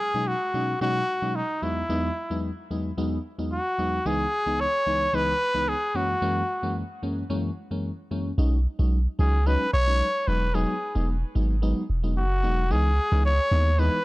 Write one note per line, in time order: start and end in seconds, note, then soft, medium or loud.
0.00 0.29 G#4 loud
0.14 0.34 B2 medium
0.14 0.34 F#3 medium
0.14 0.34 G#3 medium
0.14 0.34 C#4 medium
0.14 0.35 D#4 medium
0.27 0.81 F#4 medium
0.54 0.75 B2 medium
0.54 0.75 F#3 medium
0.54 0.75 G#3 medium
0.54 0.75 C#4 medium
0.54 0.75 D#4 medium
0.81 1.02 B2 medium
0.81 1.02 F#3 medium
0.81 1.02 G#3 medium
0.81 1.02 C#4 medium
0.81 1.02 D#4 loud
0.81 1.37 F#4 loud
1.22 1.42 B2 medium
1.22 1.42 F#3 medium
1.22 1.42 G#3 medium
1.22 1.42 C#4 medium
1.22 1.43 D#4 medium
1.35 1.64 D#4 medium
1.62 1.83 E2 medium
1.62 1.83 F#3 medium
1.62 1.83 G#3 medium
1.62 1.83 B3 medium
1.62 1.83 D#4 medium
1.62 2.44 E4 medium
1.89 2.10 E2 medium
1.89 2.10 F#3 medium
1.89 2.10 G#3 medium
1.89 2.10 B3 medium
1.89 2.10 D#4 loud
2.30 2.50 E2 medium
2.30 2.51 F#3 medium
2.30 2.51 G#3 medium
2.30 2.51 B3 medium
2.30 2.51 D#4 medium
2.71 2.91 E2 medium
2.71 2.91 F#3 medium
2.71 2.91 G#3 medium
2.71 2.91 B3 medium
2.71 2.91 D#4 medium
2.97 3.18 E2 medium
2.97 3.18 F#3 medium
2.97 3.18 G#3 medium
2.97 3.18 B3 medium
2.97 3.18 D#4 loud
3.38 3.59 E2 medium
3.38 3.59 F#3 medium
3.38 3.59 G#3 medium
3.38 3.59 B3 medium
3.38 3.59 D#4 medium
3.52 4.08 F#4 medium
3.78 3.99 E2 medium
3.78 3.99 F#3 medium
3.78 3.99 G#3 medium
3.78 3.99 B3 medium
3.78 3.99 D#4 medium
4.05 4.26 C#2 medium
4.05 4.26 E3 medium
4.05 4.26 G#3 medium
4.05 4.26 B3 medium
4.05 4.26 D#4 loud
4.05 4.62 G#4 loud
4.46 4.67 C#2 medium
4.46 4.67 E3 medium
4.46 4.67 G#3 medium
4.46 4.67 B3 medium
4.46 4.67 D#4 medium
4.60 5.16 C#5 loud
4.86 5.07 C#2 medium
4.86 5.07 E3 medium
4.86 5.07 G#3 medium
4.86 5.07 B3 medium
4.86 5.07 D#4 medium
5.13 5.34 C#2 medium
5.13 5.34 E3 medium
5.13 5.34 G#3 medium
5.13 5.34 B3 medium
5.13 5.34 D#4 loud
5.13 5.70 B4 loud
5.54 5.75 C#2 medium
5.54 5.75 E3 medium
5.54 5.75 G#3 medium
5.54 5.75 B3 medium
5.54 5.75 D#4 medium
5.68 5.97 G#4 medium
5.94 6.15 F#2 medium
5.94 6.15 E3 medium
5.94 6.15 G#3 medium
5.94 6.15 A#3 medium
5.94 6.16 C#4 medium
5.94 6.76 F#4 medium
6.22 6.42 F#2 loud
6.22 6.42 E3 medium
6.22 6.42 G#3 medium
6.22 6.43 A#3 medium
6.22 6.43 C#4 loud
6.63 6.83 F#2 medium
6.63 6.83 E3 medium
6.63 6.83 G#3 medium
6.63 6.83 A#3 medium
6.63 6.83 C#4 medium
7.03 7.23 F#2 medium
7.03 7.23 E3 medium
7.03 7.24 G#3 medium
7.03 7.24 A#3 medium
7.03 7.24 C#4 medium
7.30 7.50 F#2 medium
7.30 7.50 E3 medium
7.30 7.51 G#3 medium
7.30 7.51 A#3 medium
7.30 7.51 C#4 loud
7.71 7.91 F#2 medium
7.71 7.91 E3 medium
7.71 7.91 G#3 medium
7.71 7.91 A#3 medium
7.71 7.91 C#4 medium
8.11 8.32 F#2 medium
8.11 8.32 E3 medium
8.11 8.32 G#3 medium
8.11 8.32 A#3 medium
8.11 8.32 C#4 medium
8.38 8.67 B1 loud
8.38 8.59 F#3 medium
8.38 8.59 G#3 medium
8.38 8.59 C#4 medium
8.38 8.59 D#4 loud
8.79 9.07 B1 loud
8.79 8.99 F#3 medium
8.79 8.99 G#3 medium
8.79 8.99 C#4 medium
8.79 8.99 D#4 medium
9.19 9.57 C#2 loud
9.19 9.40 F#3 medium
9.19 9.40 G#3 medium
9.19 9.40 C#4 medium
9.19 9.40 D#4 medium
9.19 9.48 G#4 medium
9.46 9.67 F#3 medium
9.46 9.67 G#3 medium
9.46 9.67 C#4 medium
9.46 9.67 D#4 loud
9.46 9.73 B4 medium
9.73 10.02 B1 medium
9.73 10.29 C#5 loud
9.87 10.07 F#3 medium
9.87 10.07 G#3 medium
9.87 10.07 C#4 medium
9.87 10.08 D#4 medium
10.27 10.65 E1 medium
10.27 10.48 F#3 medium
10.27 10.48 G#3 medium
10.27 10.48 B3 medium
10.27 10.48 D#4 medium
10.27 10.56 B4 loud
10.54 10.75 F#3 medium
10.54 10.75 G#3 medium
10.54 10.75 B3 medium
10.54 10.75 D#4 loud
10.54 11.09 G#4 medium
10.95 11.24 E1 medium
10.95 11.15 F#3 medium
10.95 11.15 G#3 medium
10.95 11.15 B3 medium
10.95 11.15 D#4 medium
11.35 11.73 G#1 loud
11.35 11.56 F#3 medium
11.35 11.56 G#3 medium
11.35 11.56 B3 medium
11.35 11.56 D#4 medium
11.62 11.83 F#3 medium
11.62 11.83 G#3 medium
11.62 11.83 B3 medium
11.62 11.83 D#4 loud
11.90 12.18 E1 medium
12.03 12.23 F#3 medium
12.03 12.23 G#3 medium
12.03 12.24 B3 medium
12.03 12.24 D#4 medium
12.17 12.45 F#1 loud
12.17 12.73 F#4 medium
12.43 12.72 E1 medium
12.43 12.64 F#3 medium
12.43 12.64 G#3 medium
12.43 12.64 B3 medium
12.43 12.64 D#4 medium
12.70 13.00 C#2 loud
12.70 12.91 E3 medium
12.70 12.91 G#3 medium
12.70 12.91 B3 medium
12.70 12.91 D#4 loud
12.70 13.24 G#4 loud
13.11 13.40 C#2 loud
13.11 13.32 E3 medium
13.11 13.32 G#3 medium
13.11 13.32 B3 medium
13.11 13.32 D#4 medium
13.25 13.81 C#5 loud
13.51 13.90 D#2 loud
13.51 13.72 E3 medium
13.51 13.72 G#3 medium
13.51 13.72 B3 medium
13.51 13.72 D#4 medium
13.78 13.99 E3 medium
13.78 13.99 G#3 medium
13.78 13.99 B3 medium
13.78 13.99 D#4 loud
13.78 14.05 B4 loud